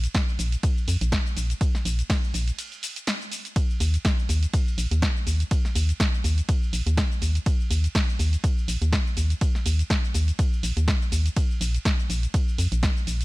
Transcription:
0.04 closed hi-hat, cabasa
0.15 kick, snare, closed hi-hat, ride, cabasa
0.29 cabasa
0.39 fm bass A#1, open hi-hat, cabasa
0.52 closed hi-hat, cabasa
0.63 kick, closed hi-hat, ride, cabasa
0.78 cabasa
0.88 fm bass F2, open hi-hat, cabasa
1.01 fm bass A#1, closed hi-hat, cabasa
1.12 kick, snare, closed hi-hat, ride, cabasa
1.26 cabasa
1.37 fm bass A#1, open hi-hat, cabasa
1.50 closed hi-hat, cabasa
1.61 kick, closed hi-hat, ride, cabasa
1.75 snare, cabasa
1.85 fm bass A#1, open hi-hat, cabasa
1.99 closed hi-hat, cabasa
2.10 kick, snare, closed hi-hat, ride, cabasa
2.24 cabasa
2.34 fm bass A#1, open hi-hat, cabasa
2.48 closed hi-hat, cabasa
2.59 closed hi-hat, ride, cabasa
2.72 closed hi-hat, cabasa
2.83 open hi-hat, cabasa
2.96 closed hi-hat, cabasa
3.07 snare, closed hi-hat, ride, cabasa
3.21 cabasa
3.32 open hi-hat, cabasa
3.45 closed hi-hat, cabasa
3.56 kick, closed hi-hat, ride, cabasa
3.70 cabasa
3.80 fm bass D#2, open hi-hat, cabasa
3.94 closed hi-hat, cabasa
4.05 kick, snare, closed hi-hat, ride, cabasa
4.19 cabasa
4.29 fm bass D#2, open hi-hat, cabasa
4.43 closed hi-hat, cabasa
4.53 kick, closed hi-hat, ride, cabasa
4.68 cabasa
4.78 fm bass A#1, open hi-hat, cabasa
4.91 fm bass D#2, closed hi-hat, cabasa
5.02 kick, snare, closed hi-hat, ride, cabasa
5.17 cabasa
5.27 fm bass D#2, open hi-hat, cabasa
5.40 closed hi-hat, cabasa
5.51 kick, closed hi-hat, ride, cabasa
5.65 snare, cabasa
5.75 fm bass D#2, open hi-hat, cabasa
5.89 closed hi-hat, cabasa
6.00 kick, snare, closed hi-hat, ride, cabasa
6.14 cabasa
6.24 fm bass D#2, open hi-hat, cabasa
6.38 closed hi-hat, cabasa
6.49 kick, closed hi-hat, ride, cabasa
6.63 cabasa
6.73 fm bass A#1, open hi-hat, cabasa
6.87 fm bass D#2, closed hi-hat, cabasa
6.97 kick, snare, closed hi-hat, ride, cabasa
7.12 cabasa
7.22 fm bass D#2, open hi-hat, cabasa
7.35 closed hi-hat, cabasa
7.46 kick, closed hi-hat, ride, cabasa
7.61 cabasa
7.71 fm bass D#2, open hi-hat, cabasa
7.84 closed hi-hat, cabasa
7.95 kick, snare, closed hi-hat, ride, cabasa
8.09 cabasa
8.19 fm bass D#2, open hi-hat, cabasa
8.33 closed hi-hat, cabasa
8.44 kick, closed hi-hat, ride, cabasa
8.58 cabasa
8.68 fm bass A#1, open hi-hat, cabasa
8.82 fm bass D#2, closed hi-hat, cabasa
8.93 kick, snare, closed hi-hat, ride, cabasa
9.07 cabasa
9.17 fm bass D#2, open hi-hat, cabasa
9.30 closed hi-hat, cabasa
9.41 kick, closed hi-hat, ride, cabasa
9.55 snare, cabasa
9.66 fm bass D#2, open hi-hat, cabasa
9.79 closed hi-hat, cabasa
9.90 kick, snare, closed hi-hat, ride, cabasa
10.04 cabasa
10.14 fm bass D#2, open hi-hat, cabasa
10.28 closed hi-hat, cabasa
10.39 kick, closed hi-hat, ride, cabasa
10.53 cabasa
10.63 fm bass A#1, open hi-hat, cabasa
10.77 fm bass D#2, closed hi-hat, cabasa
10.88 kick, snare, closed hi-hat, ride, cabasa
11.02 cabasa
11.12 fm bass D#2, open hi-hat, cabasa
11.26 closed hi-hat, cabasa
11.36 kick, closed hi-hat, ride, cabasa
11.51 cabasa
11.61 fm bass A#1, open hi-hat, cabasa
11.74 closed hi-hat, cabasa
11.85 kick, snare, closed hi-hat, ride, cabasa
12.00 cabasa
12.10 fm bass A#1, open hi-hat, cabasa
12.23 closed hi-hat, cabasa
12.34 kick, closed hi-hat, ride, cabasa
12.48 cabasa
12.58 fm bass F2, open hi-hat, cabasa
12.72 fm bass A#1, closed hi-hat, cabasa
12.83 kick, snare, closed hi-hat, ride, cabasa
12.97 cabasa
13.07 fm bass A#1, open hi-hat, cabasa
13.21 closed hi-hat, cabasa

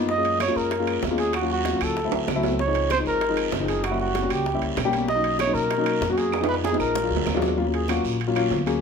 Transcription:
Already playing: upright bass F#2
0.09 trumpet D#5, high bongo, high conga, long guiro
0.17 upright piano G#3 A#3 C#4 F4
0.25 high bongo, high timbale
0.40 trumpet C#5, high bongo, high conga, high timbale, low timbale, short guiro, claves
0.48 upright piano G#3 A#3 C#4 F4
0.56 upright bass F#2, trumpet A#4, high bongo, high conga, short guiro
0.71 high bongo, high conga, high timbale, long guiro
0.79 upright piano G#3 A#3 C#4 F4
0.87 high bongo, high conga, high timbale, claves
1.03 upright bass D#2, high bongo, low bongo, high conga, low timbale, short guiro
1.10 upright piano G#3 A#3 C#4 F4
1.18 trumpet G#4, high timbale, short guiro
1.33 trumpet F#4, high bongo, high conga, high timbale, long guiro, claves
1.42 upright piano F#3 A#3 C#4 F4
1.50 trumpet F#4, high bongo
1.65 high bongo, high conga, high timbale, low timbale, short guiro
1.73 upright piano F#3 A#3 C#4 F4
1.81 upright bass D2, trumpet A4, high bongo, high conga, high timbale, short guiro, claves
1.97 high bongo, high conga, long guiro
2.04 upright piano F#3 A3 C4 E4
2.12 upright bass D2, high timbale
2.28 upright bass C#2, high bongo, low bongo, high conga, low timbale, short guiro, claves
2.35 upright piano F#3 A3 C4 E4
2.43 high bongo, high conga, low timbale, short guiro
2.59 trumpet C#5, high bongo, high conga, long guiro
2.67 upright piano F3 G#3 C4 D#4
2.75 high bongo, high timbale
2.90 trumpet C5, high bongo, high conga, high timbale, low timbale, short guiro, claves
2.98 upright piano F3 G#3 C4 D#4
3.05 upright bass G#1, trumpet A#4, high bongo, high conga, short guiro
3.21 high bongo, high conga, high timbale, long guiro
3.28 upright piano F3 G#3 C4 D#4
3.37 high bongo, high conga, high timbale, claves
3.52 upright bass F#1, high bongo, low bongo, high conga, low timbale, short guiro
3.60 upright piano F3 G#3 C4 D#4
3.68 trumpet G#4, high timbale, short guiro
3.84 trumpet F#4, high bongo, high conga, high timbale, long guiro, claves
3.90 upright piano G3 A#3 C#4 E4
4.00 trumpet F#4, high bongo, high conga
4.15 high bongo, high conga, high timbale, low timbale, short guiro
4.22 upright piano G3 A#3 C#4 F#4
4.30 upright bass C#2, trumpet G4, high bongo, high conga, high timbale, short guiro, claves
4.46 high bongo, high conga, long guiro
4.54 upright piano G3 A#3 C#4 E4
4.62 upright bass C#2, high conga, high timbale
4.77 upright bass B1, high bongo, low bongo, high conga, high timbale, low timbale, short guiro, claves
4.85 upright piano G3 A#3 C#4 G4
4.93 high bongo, high conga, high timbale, short guiro
5.08 trumpet D#5, high bongo, high conga, long guiro
5.15 upright piano F#3 A#3 C#4 D#4
5.23 high bongo, high conga, high timbale
5.39 trumpet C#5, high bongo, high conga, high timbale, low timbale, short guiro, claves
5.47 upright piano F#3 A#3 C#4 D#4
5.54 upright bass B2, trumpet A#4, high bongo, high conga, short guiro
5.71 high bongo, high timbale, long guiro
5.78 upright piano F#3 A#3 C#4 D#4
5.86 high bongo, high timbale, claves
6.01 upright bass F2, high bongo, low bongo, high conga, low timbale, short guiro
6.09 upright piano F#3 A#3 C#4 F#4, trumpet F#4
6.17 trumpet G#4, high timbale, short guiro
6.32 high bongo, high conga, high timbale, long guiro, claves
6.40 upright piano F3 G#3 B3 D#4, high timbale
6.49 trumpet B4, high bongo, high conga
6.54 high timbale
6.64 trumpet G#4, high bongo, high conga, high timbale, short guiro
6.71 upright piano F3 G#3 B3 D#4, low timbale
6.79 upright bass A#1, trumpet A#4, high bongo, high conga, short guiro, claves
6.95 high bongo, low timbale, long guiro
7.03 upright piano F#3 G#3 D4 F4
7.10 upright bass D2, high conga
7.17 low timbale
7.26 upright bass D#2, low bongo, high conga, low timbale, short guiro, claves
7.34 upright piano F#3 G#3 D4 F4, low timbale
7.42 low bongo, high conga, short guiro
7.48 low timbale
7.58 upright piano F#3 A#3 C#4 F4, high conga, long guiro
7.67 upright piano F#3 A#3 C#4 F4
7.73 trumpet G#4, high conga, high timbale
7.88 upright piano F#3 A#3 C#4 F4, trumpet F#4, high conga, high timbale, low timbale, short guiro, claves
8.04 upright bass A#1, high conga, short guiro
8.20 high timbale, long guiro
8.27 upright piano F#3 A#3 C#4 F4
8.36 upright piano F#3 A#3 C#4 F4, high timbale, claves
8.51 upright bass D2, high conga, low timbale, short guiro
8.66 upright piano F#3 A#3 C#4 G#4, high timbale, short guiro

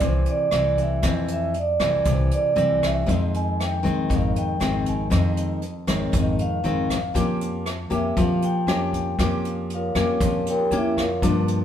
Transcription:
Already playing: nylon-string guitar E3 A3 C4
0.00 upright bass C2, nylon-string guitar C3, kick, closed hi-hat
0.06 vibraphone C5
0.26 closed hi-hat
0.30 vibraphone D5
0.51 upright bass C2, nylon-string guitar E3 A3 C4, cross-stick, closed hi-hat
0.78 vibraphone E5, kick, closed hi-hat
1.02 nylon-string guitar F2 E3 A3 C4, upright bass F2, kick, cross-stick, closed hi-hat
1.28 closed hi-hat
1.32 vibraphone E5
1.54 closed hi-hat
1.59 vibraphone D5
1.80 upright bass C2, nylon-string guitar E3 A3 C4, kick, cross-stick, closed hi-hat
2.05 upright bass C2, nylon-string guitar C3, kick, closed hi-hat
2.10 vibraphone C5
2.31 vibraphone D5, closed hi-hat
2.56 upright bass C2, nylon-string guitar E3 A3 C4, closed hi-hat
2.83 vibraphone E5, kick, cross-stick, closed hi-hat
3.06 nylon-string guitar F2 D#3 G#3 C4, upright bass F2, kick, closed hi-hat
3.34 vibraphone G#5, closed hi-hat
3.60 vibraphone G5, cross-stick, closed hi-hat
3.83 upright bass G#1, nylon-string guitar D#3 G#3 C4, kick, closed hi-hat
4.09 upright bass G#1, nylon-string guitar F2, kick, closed hi-hat
4.14 vibraphone F5
4.36 vibraphone G5, closed hi-hat
4.60 upright bass G#1, nylon-string guitar D#3 G#3 C4, cross-stick, closed hi-hat
4.86 vibraphone G#5, kick, closed hi-hat
5.10 nylon-string guitar F2 D#3 G#3 C4, upright bass F2, kick, cross-stick, closed hi-hat
5.37 closed hi-hat
5.62 closed hi-hat
5.87 upright bass G#1, nylon-string guitar D#3 G#3 C4, vibraphone C#5, kick, cross-stick, closed hi-hat
6.12 upright bass G#1, nylon-string guitar F2, kick, closed hi-hat
6.18 vibraphone D#5
6.39 vibraphone F5, closed hi-hat
6.64 upright bass G#1, nylon-string guitar D#3 G#3 C4, closed hi-hat
6.90 kick, cross-stick, closed hi-hat
7.14 upright bass F2, nylon-string guitar F3 A#3 C#4 G4, kick, closed hi-hat
7.41 closed hi-hat
7.66 cross-stick, closed hi-hat
7.90 upright bass F2, nylon-string guitar A#3 C#4 G4, vibraphone E5, kick, closed hi-hat
8.17 upright bass F2, nylon-string guitar F3, kick, closed hi-hat
8.21 vibraphone F5
8.42 vibraphone G5, closed hi-hat
8.67 upright bass F2, nylon-string guitar A#3 C#4 G4, cross-stick, closed hi-hat
8.93 kick, closed hi-hat
9.19 upright bass F2, nylon-string guitar F3 A#3 C#4 G4, kick, cross-stick, closed hi-hat
9.45 closed hi-hat
9.70 closed hi-hat
9.74 vibraphone F4 A#4 C#5 F5
9.95 upright bass F2, nylon-string guitar A#3 C#4 G4, kick, cross-stick, closed hi-hat
10.20 upright bass F2, nylon-string guitar F3, kick, closed hi-hat
10.47 vibraphone G4 A#4 C#5 G5, closed hi-hat
10.71 upright bass F2, nylon-string guitar A#3 C#4 G4, closed hi-hat
10.77 vibraphone E4 E5
10.97 vibraphone F4 C#5 F5, kick, cross-stick, closed hi-hat
11.01 vibraphone A#4
11.22 upright bass G2, nylon-string guitar G2 F3 A#3 D4, kick, closed hi-hat
11.48 closed hi-hat

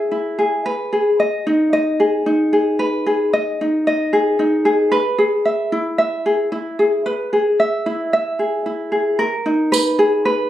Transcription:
Already playing: ukulele E4 G#4 E5
0.11 ukulele E4
0.39 ukulele G#4
0.66 ukulele B4
0.93 ukulele G#4
1.20 ukulele D#5
1.47 ukulele D#4
1.73 ukulele D#5
2.00 ukulele G#4
2.26 ukulele D#4
2.53 ukulele G#4
2.79 ukulele B4
3.06 ukulele G#4
3.33 ukulele D#5
3.61 ukulele D#4
3.87 ukulele D#5
4.13 ukulele G#4
4.39 ukulele D#4
4.65 ukulele G#4
4.92 ukulele B4
5.18 ukulele G#4
5.45 ukulele E5
5.72 ukulele E4
5.98 ukulele E5
6.26 ukulele G#4
6.52 ukulele E4
6.79 ukulele G#4
7.06 ukulele B4
7.33 ukulele G#4
7.60 ukulele E5
7.86 ukulele E4
8.13 ukulele E5
8.39 ukulele G#4
8.66 ukulele E4
8.92 ukulele G#4
9.19 ukulele A#4
9.46 ukulele D#4
9.72 ukulele B4, tambourine
9.99 ukulele G#4
10.25 ukulele B4

